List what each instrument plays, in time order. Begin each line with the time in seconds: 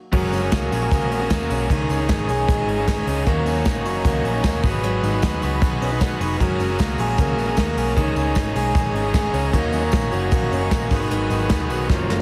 0.12 picked electric bass F#1, overdriven electric guitar F#3 G#3 C#4 F#4 A#4, clean electric guitar F#3, transistor combo organ F#4 G#4 A#4, kick, crash, tambourine
0.32 picked electric bass F#1, clean electric guitar C#4, open hi-hat, tambourine
0.42 overdriven electric guitar C#4 F#4 A#4
0.52 picked electric bass C#2, clean electric guitar A#3, kick, snare, hi-hat pedal, ride, tambourine
0.71 picked electric bass A#1, overdriven electric guitar G#3 C#4 F#4 A#4, clean electric guitar F#4, open hi-hat, tambourine
0.82 clean electric guitar G#4
0.91 picked electric bass C#2, clean electric guitar A#3, kick, hi-hat pedal, ride, tambourine
1.11 picked electric bass A#1, clean electric guitar B3, open hi-hat, tambourine
1.20 clean electric guitar C#4, overdriven electric guitar C#4 F#4 A#4
1.30 picked electric bass D#2, overdriven electric guitar G#3 C#4 F#4 A#4, clean electric guitar A#3, kick, snare, hi-hat pedal, ride, tambourine
1.50 picked electric bass B1, overdriven electric guitar G#3 C#4 F#4 A#4, clean electric guitar C#4, open hi-hat, tambourine
1.69 picked electric bass C#2, overdriven electric guitar C#3 G#3 C#4 D#4 G#4, clean electric guitar D#3, transistor combo organ D#4 G#4 C#5, kick, hi-hat pedal, ride
1.89 picked electric bass C#2, clean electric guitar C#4, open hi-hat, tambourine
1.99 overdriven electric guitar C#4 D#4 G#4
2.08 picked electric bass G#1, clean electric guitar G#3, kick, snare, hi-hat pedal, ride, tambourine
2.28 picked electric bass B1, overdriven electric guitar G#3 C#4 D#4 G#4, clean electric guitar G#4, open hi-hat, tambourine
2.48 picked electric bass A#1, clean electric guitar G#3, kick, hi-hat pedal, ride, tambourine
2.67 picked electric bass G#1, clean electric guitar C#4, open hi-hat
2.77 overdriven electric guitar C#4 D#4 G#4
2.87 overdriven electric guitar G#3 C#4 D#4 G#4, clean electric guitar G#3, kick, snare, hi-hat pedal, ride, tambourine
3.06 picked electric bass C#2, overdriven electric guitar G#3 C#4 D#4 G#4, clean electric guitar C#4, open hi-hat, tambourine
3.26 picked electric bass D#2, overdriven electric guitar D#3 F#3 C#4 D#4 A#4, clean electric guitar A#3, transistor combo organ D#4 F#4 C#5, kick, hi-hat pedal, ride
3.46 picked electric bass D#2, clean electric guitar C#4, open hi-hat, tambourine
3.56 overdriven electric guitar C#4 D#4 A#4
3.65 picked electric bass A#1, clean electric guitar A#3, kick, snare, hi-hat pedal, ride, tambourine
3.85 picked electric bass F#1, overdriven electric guitar F#3 C#4 D#4 A#4, clean electric guitar F#4, open hi-hat, tambourine
4.05 picked electric bass C#2, clean electric guitar A#3, kick, hi-hat pedal, ride, tambourine
4.24 picked electric bass A#1, clean electric guitar C#4, open hi-hat
4.34 overdriven electric guitar C#4 D#4 A#4
4.43 picked electric bass D#2, overdriven electric guitar F#3 C#4 D#4 A#4, clean electric guitar A#3, kick, snare, hi-hat pedal, ride, tambourine
4.63 picked electric bass G#1, overdriven electric guitar F#3 B3 D#4 B4, clean electric guitar F#3, transistor combo organ F#4 G#4 B4, kick, open hi-hat, tambourine
4.83 picked electric bass G#1, overdriven electric guitar G#2 D#3 F#3 B3 D#4 B4, clean electric guitar F#3, hi-hat pedal, ride, tambourine
5.03 picked electric bass G#1, clean electric guitar D#4, open hi-hat, tambourine
5.13 overdriven electric guitar F#3 B3 D#4 B4
5.22 picked electric bass D#2, clean electric guitar B3, kick, snare, hi-hat pedal, ride, tambourine
5.42 picked electric bass C#2, overdriven electric guitar F#3 B3 D#4 B4, clean electric guitar F#4, open hi-hat, tambourine
5.61 picked electric bass B1, clean electric guitar B3, kick, hi-hat pedal, ride, tambourine
5.81 picked electric bass B1, clean electric guitar C#4, transistor combo organ D#5, open hi-hat
5.91 overdriven electric guitar F#3 B3 D#4 B4, clean electric guitar D#4
6.01 overdriven electric guitar F#3 B3 D#4 B4, clean electric guitar B3, transistor combo organ F#5, kick, snare, hi-hat pedal, ride, tambourine
6.20 picked electric bass F1, overdriven electric guitar F#3 B3 D#4 B4, clean electric guitar D#4, transistor combo organ C#6, open hi-hat, tambourine
6.39 picked electric bass F#1, overdriven electric guitar F#3 G#3 C#4 F#4 A#4, clean electric guitar F#3, transistor combo organ F#4 G#4 A#4, kick, hi-hat pedal, ride, tambourine
6.59 picked electric bass F#1, clean electric guitar C#4, open hi-hat, tambourine
6.70 overdriven electric guitar C#4 F#4 A#4
6.79 picked electric bass C#2, clean electric guitar A#3, kick, snare, hi-hat pedal, ride, tambourine
6.98 picked electric bass A#1, overdriven electric guitar G#3 C#4 F#4 A#4, clean electric guitar G#4, open hi-hat, tambourine
7.18 picked electric bass C#2, clean electric guitar A#3, kick, hi-hat pedal, ride, tambourine
7.37 picked electric bass A#1, clean electric guitar B3, open hi-hat, tambourine
7.47 clean electric guitar C#4, overdriven electric guitar C#4 F#4 A#4
7.57 picked electric bass D#2, overdriven electric guitar G#3 C#4 F#4 A#4, clean electric guitar A#3, kick, snare, hi-hat pedal, ride, tambourine
7.76 picked electric bass B1, overdriven electric guitar G#3 C#4 F#4 A#4, clean electric guitar C#4, open hi-hat, tambourine
7.96 picked electric bass C#2, overdriven electric guitar C#3 G#3 C#4 D#4 G#4, clean electric guitar D#3, transistor combo organ D#4 G#4 C#5, kick, hi-hat pedal, ride, tambourine
8.15 picked electric bass C#2, clean electric guitar C#4, open hi-hat, tambourine
8.25 overdriven electric guitar C#4 D#4 G#4
8.35 picked electric bass G#1, clean electric guitar G#3, kick, snare, hi-hat pedal, ride, tambourine
8.54 picked electric bass B1, overdriven electric guitar G#3 C#4 D#4 G#4, clean electric guitar G#4, open hi-hat, tambourine
8.75 picked electric bass A#1, clean electric guitar G#3, kick, hi-hat pedal, ride, tambourine
8.94 picked electric bass G#1, clean electric guitar C#4, open hi-hat
9.03 overdriven electric guitar C#4 D#4 G#4
9.13 overdriven electric guitar G#3 C#4 D#4 G#4, clean electric guitar G#3, kick, snare, hi-hat pedal, ride, tambourine
9.33 picked electric bass C#2, overdriven electric guitar G#3 C#4 D#4 G#4, clean electric guitar C#4, open hi-hat, tambourine
9.53 picked electric bass D#2, overdriven electric guitar D#3 F#3 C#4 D#4 A#4, clean electric guitar A#3, transistor combo organ D#4 F#4 C#5, kick, hi-hat pedal, ride, tambourine
9.72 picked electric bass D#2, clean electric guitar C#4, open hi-hat, tambourine
9.82 overdriven electric guitar C#4 D#4 A#4
9.92 picked electric bass A#1, clean electric guitar A#3, kick, snare, hi-hat pedal, ride, tambourine
10.11 picked electric bass F#1, overdriven electric guitar F#3 C#4 D#4 A#4, clean electric guitar F#4, open hi-hat, tambourine
10.31 picked electric bass A#1, clean electric guitar A#3, kick, hi-hat pedal, ride, tambourine
10.51 picked electric bass F#1, clean electric guitar C#4, open hi-hat, tambourine
10.61 overdriven electric guitar C#4 D#4 A#4
10.71 picked electric bass A#1, overdriven electric guitar F#3 C#4 D#4 A#4, clean electric guitar A#3, kick, snare, hi-hat pedal, ride, tambourine
10.90 picked electric bass G#1, overdriven electric guitar D#3 F#3 B3 D#4, clean electric guitar D#3, transistor combo organ F#4 G#4 B4, kick, open hi-hat, tambourine
11.09 picked electric bass G#1, overdriven electric guitar G#2 D#3 F#3 B3 D#4, clean electric guitar D#3, hi-hat pedal, ride, tambourine
11.30 picked electric bass G#1, clean electric guitar D#4, open hi-hat, tambourine
11.40 overdriven electric guitar F#3 B3 D#4
11.49 picked electric bass D#2, clean electric guitar B3, kick, snare, hi-hat pedal, ride, tambourine
11.70 picked electric bass B1, overdriven electric guitar D#3 F#3 B3 D#4, clean electric guitar F#4, open hi-hat, tambourine
11.89 picked electric bass F#1, overdriven electric guitar F#2 C#3 F3 A#3 C#4, clean electric guitar F3, transistor combo organ F#3 F4 A#4, kick, snare, tambourine
12.09 picked electric bass F#1, clean electric guitar A#3, snare, tambourine
12.18 overdriven electric guitar C#4